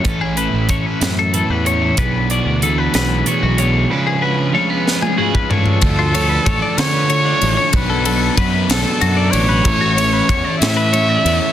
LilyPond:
<<
  \new Staff \with { instrumentName = "Trumpet" } { \time 6/8 \key a \major \tempo 4. = 63 r2. | r2. | r2 r8 a'8~ | a'4. cis''4. |
b'4 r8 a'4 cis''8~ | cis''4. e''4. | }
  \new Staff \with { instrumentName = "Clean electric guitar" } { \time 6/8 \key a \major a'16 gis'16 b'8 cis''16 b'8 a'16 a'16 b'16 cis''8 | b'8 d''8 a'16 b'16 b'8 cis''16 fis'16 cis''8 | b'16 gis'16 b'8 cis''16 b'8 gis'16 gis'16 b'16 cis''8 | r16 f'16 cis''16 b'16 cis''16 d''16 cis''16 b'16 cis''16 d'8 cis''16~ |
cis''16 a'16 a'8 b'8 a'8 fis'16 d''8 b'16 | r16 fis'16 cis''16 b'16 cis''16 d''16 cis''16 b'16 cis''16 d''8 cis''16 | }
  \new Staff \with { instrumentName = "Clean electric guitar" } { \time 6/8 \key a \major << { cis'16 e'16 a'8 cis'4 b'8 cis'16 e'16 | d'8 fis'8 a4 fis'8 d'8 | d'8 fis'16 gis'16 a16 b8. fis'16 r16 d'8 | r2. |
r2. | r2. | } \\ { a,4 e4 a,4 | b,4 e4 b,4 | cis4 eis4 gis,4 | r2. |
r2. | r2. | } >> }
  \new Staff \with { instrumentName = "Overdriven electric guitar" } { \time 6/8 \key a \major <a, e a cis' e'>8 <a cis' e'>8 <e a cis' e'>8 <a cis' e'>8 <e a cis' e'>8 <a cis' e'>8 | <b, e b d' gis'>8 <b d' gis'>8 <e b d' gis'>8 <b d' gis'>8 <e b d' gis'>8 <b d' gis'>8 | <cis eis gis cis' eis' b'>8 <gis cis' eis' b'>8 <gis cis' eis' b'>8 <gis cis' eis' b'>8 <gis cis' eis' b'>8 <gis cis' eis' b'>8 | <d f a d'>8 <d f a d'>8 <d f a d'>8 <d f a d'>8 <d f a d'>8 <d f a d'>8 |
<b, fis b d'>8 <b, fis b d'>8 <b, fis b d'>8 <b, fis b d'>8 <b, fis d'>8 <b, fis b d'>8 | <e a cis' e'>8 <e a cis' e'>8 <e cis' e'>8 <e a cis' e'>8 <e a cis' e'>8 <e a cis' e'>8 | }
  \new Staff \with { instrumentName = "Fingered electric bass" } { \clef bass \time 6/8 \key a \major a,,8. a,,8 r16 fis,8. e,8. | b,,8. d,8. b,,8 r16 b,,8. | r2. | d,4 a,,16 r16 d4 a,,16 r16 |
b,,4 fis,8 b,,16 r16 fis,8 a,,8 | a,,4 e,16 r16 a,4 e,16 r16 | }
  \new DrumStaff \with { instrumentName = "Drums" } \drummode { \time 6/8 <hh bd>8 hh8 <hh bd>8 <hh sn>8 hh8 hh8 | <hh bd>8 hh8 hh8 <hh sn>8 hh8 hh8 | r4. sn16 tommh8 bd16 tomfh16 tomfh16 | <bd cymr>8 cymr8 <bd cymr>8 <cymr sn>8 cymr8 cymr8 |
<bd cymr>8 cymr8 <bd cymr>8 <cymr sn>8 cymr8 cymr8 | <bd cymr>8 cymr8 <bd cymr>8 <cymr sn>8 cymr8 cymr8 | }
>>